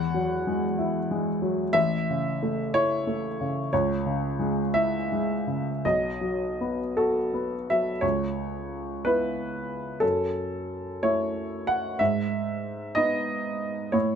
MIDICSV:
0, 0, Header, 1, 2, 480
1, 0, Start_track
1, 0, Key_signature, 4, "minor"
1, 0, Tempo, 641026
1, 1297, Tempo, 664452
1, 1298, Time_signature, 6, 3, 24, 8
1, 3217, Tempo, 728155
1, 5617, Tempo, 662252
1, 8017, Tempo, 650759
1, 10091, End_track
2, 0, Start_track
2, 0, Title_t, "Grand piano"
2, 0, Program_c, 0, 0
2, 0, Control_c, 0, 64, 127
2, 0, Note_on_c, 0, 40, 68
2, 0, Note_on_c, 0, 78, 114
2, 107, Note_on_c, 0, 54, 55
2, 353, Note_on_c, 0, 56, 53
2, 483, Note_off_c, 0, 54, 0
2, 589, Note_on_c, 0, 64, 62
2, 727, Note_off_c, 0, 56, 0
2, 832, Note_on_c, 0, 56, 55
2, 965, Note_off_c, 0, 64, 0
2, 1063, Note_on_c, 0, 54, 56
2, 1210, Note_off_c, 0, 56, 0
2, 1276, Note_off_c, 0, 40, 0
2, 1295, Note_on_c, 0, 76, 109
2, 1301, Note_off_c, 0, 78, 0
2, 1302, Note_off_c, 0, 54, 0
2, 1306, Note_on_c, 0, 33, 66
2, 1311, Control_c, 0, 64, 0
2, 1447, Control_c, 0, 64, 127
2, 1563, Note_on_c, 0, 49, 54
2, 1798, Note_on_c, 0, 57, 54
2, 1929, Note_off_c, 0, 49, 0
2, 2009, Note_off_c, 0, 76, 0
2, 2025, Note_on_c, 0, 64, 58
2, 2025, Note_on_c, 0, 73, 104
2, 2165, Note_off_c, 0, 57, 0
2, 2265, Note_on_c, 0, 57, 48
2, 2399, Note_off_c, 0, 64, 0
2, 2506, Note_on_c, 0, 49, 52
2, 2641, Note_off_c, 0, 57, 0
2, 2704, Note_off_c, 0, 33, 0
2, 2728, Note_off_c, 0, 73, 0
2, 2738, Note_off_c, 0, 49, 0
2, 2739, Note_on_c, 0, 73, 86
2, 2741, Control_c, 0, 64, 0
2, 2744, Note_on_c, 0, 37, 65
2, 2863, Control_c, 0, 64, 127
2, 2977, Note_on_c, 0, 49, 48
2, 3219, Note_on_c, 0, 56, 53
2, 3357, Note_off_c, 0, 49, 0
2, 3447, Note_on_c, 0, 76, 98
2, 3452, Note_off_c, 0, 73, 0
2, 3458, Note_on_c, 0, 64, 57
2, 3590, Note_off_c, 0, 56, 0
2, 3700, Note_on_c, 0, 56, 45
2, 3833, Note_off_c, 0, 64, 0
2, 3930, Note_on_c, 0, 49, 47
2, 4078, Note_off_c, 0, 56, 0
2, 4150, Note_off_c, 0, 37, 0
2, 4169, Note_off_c, 0, 76, 0
2, 4172, Note_off_c, 0, 49, 0
2, 4180, Note_on_c, 0, 35, 54
2, 4180, Note_on_c, 0, 75, 79
2, 4182, Control_c, 0, 64, 0
2, 4328, Control_c, 0, 64, 127
2, 4418, Note_on_c, 0, 54, 45
2, 4679, Note_on_c, 0, 59, 49
2, 4805, Note_off_c, 0, 54, 0
2, 4916, Note_on_c, 0, 69, 78
2, 4921, Note_on_c, 0, 66, 50
2, 5056, Note_off_c, 0, 59, 0
2, 5162, Note_on_c, 0, 59, 45
2, 5299, Note_off_c, 0, 66, 0
2, 5391, Note_off_c, 0, 75, 0
2, 5393, Note_off_c, 0, 69, 0
2, 5399, Note_on_c, 0, 76, 84
2, 5402, Note_on_c, 0, 54, 46
2, 5535, Note_off_c, 0, 59, 0
2, 5595, Note_off_c, 0, 35, 0
2, 5604, Note_on_c, 0, 73, 85
2, 5609, Note_on_c, 0, 37, 56
2, 5623, Note_off_c, 0, 76, 0
2, 5625, Note_off_c, 0, 54, 0
2, 5629, Control_c, 0, 64, 0
2, 5750, Control_c, 0, 64, 127
2, 6338, Note_off_c, 0, 73, 0
2, 6354, Note_on_c, 0, 71, 85
2, 6361, Note_on_c, 0, 59, 45
2, 6365, Note_on_c, 0, 64, 48
2, 7026, Note_off_c, 0, 37, 0
2, 7039, Note_off_c, 0, 59, 0
2, 7041, Note_off_c, 0, 64, 0
2, 7046, Note_on_c, 0, 69, 82
2, 7055, Note_on_c, 0, 42, 54
2, 7064, Note_off_c, 0, 71, 0
2, 7073, Control_c, 0, 64, 0
2, 7201, Control_c, 0, 64, 127
2, 7771, Note_off_c, 0, 69, 0
2, 7790, Note_on_c, 0, 73, 89
2, 7792, Note_on_c, 0, 57, 44
2, 7797, Note_on_c, 0, 64, 50
2, 8261, Note_on_c, 0, 78, 88
2, 8265, Note_off_c, 0, 73, 0
2, 8468, Note_off_c, 0, 42, 0
2, 8478, Note_off_c, 0, 57, 0
2, 8480, Note_off_c, 0, 64, 0
2, 8496, Note_on_c, 0, 76, 87
2, 8501, Note_off_c, 0, 78, 0
2, 8506, Note_on_c, 0, 44, 59
2, 8513, Control_c, 0, 64, 0
2, 8636, Control_c, 0, 64, 127
2, 9202, Note_on_c, 0, 75, 94
2, 9214, Note_off_c, 0, 76, 0
2, 9214, Note_on_c, 0, 63, 50
2, 9220, Note_on_c, 0, 59, 49
2, 9905, Note_off_c, 0, 63, 0
2, 9908, Note_off_c, 0, 59, 0
2, 9909, Note_off_c, 0, 44, 0
2, 9920, Note_on_c, 0, 73, 82
2, 9928, Note_off_c, 0, 75, 0
2, 9930, Note_on_c, 0, 45, 64
2, 9949, Control_c, 0, 64, 0
2, 10085, Control_c, 0, 64, 127
2, 10091, Note_off_c, 0, 45, 0
2, 10091, Note_off_c, 0, 73, 0
2, 10091, End_track
0, 0, End_of_file